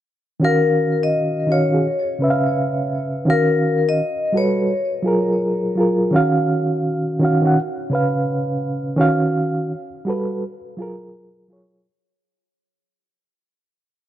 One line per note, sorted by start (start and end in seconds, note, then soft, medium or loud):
0.40 1.09 D#3 loud
0.40 1.10 C#4 medium
0.40 1.11 F#4 medium
0.44 0.99 A#4 medium
0.44 1.12 F5 loud
1.03 1.51 D#5 medium
1.47 1.63 D#3 medium
1.47 1.63 C#4 medium
1.47 1.64 F#4 medium
1.52 2.06 C#5 medium
1.52 1.65 F5 medium
1.69 1.84 D#3 medium
1.69 1.85 C#4 medium
1.69 1.86 F#4 medium
1.74 1.86 G#4 medium
2.19 2.88 C#3 medium
2.19 2.89 C#4 medium
2.19 2.90 B4 medium
2.24 2.31 E5 medium
2.30 2.94 F5 loud
3.25 3.95 D#3 loud
3.25 3.96 C#4 medium
3.25 3.97 F#4 medium
3.30 3.84 A#4 medium
3.30 3.97 F5 loud
3.89 4.33 D#5 medium
4.33 4.70 G3 medium
4.33 4.70 F#4 medium
4.33 4.71 A4 medium
4.37 4.72 B4 medium
4.37 4.92 C#5 medium
5.03 5.52 F#3 medium
5.03 5.53 F4 medium
5.03 5.54 G#4 medium
5.08 5.54 A#4 loud
5.76 6.03 F#3 medium
5.76 6.04 F4 medium
5.76 6.05 G#4 medium
5.80 6.06 A#4 medium
6.11 6.81 D#3 loud
6.11 6.82 C#4 loud
6.11 6.82 F#4 loud
6.16 6.83 F5 loud
7.20 7.35 D#3 loud
7.20 7.36 C#4 medium
7.20 7.36 F#4 medium
7.25 7.37 F5 medium
7.42 7.56 D#3 medium
7.42 7.57 C#4 medium
7.42 7.58 F#4 medium
7.47 7.58 F#5 medium
7.90 8.59 C#3 loud
7.90 8.60 C#4 medium
7.90 8.61 B4 medium
7.95 8.62 F5 loud
8.96 9.66 D#3 loud
8.96 9.67 C#4 loud
8.96 9.68 F#4 loud
9.01 9.69 F5 loud
10.05 10.42 G3 medium
10.05 10.42 F#4 medium
10.05 10.43 A4 medium
10.10 10.44 B4 medium
10.77 11.25 F#3 medium
10.77 11.26 F4 medium
10.77 11.27 G#4 medium
10.82 11.27 A#4 loud
11.48 11.75 F#3 medium
11.48 11.76 F4 medium
11.48 11.77 G#4 medium
11.53 11.77 C#5 medium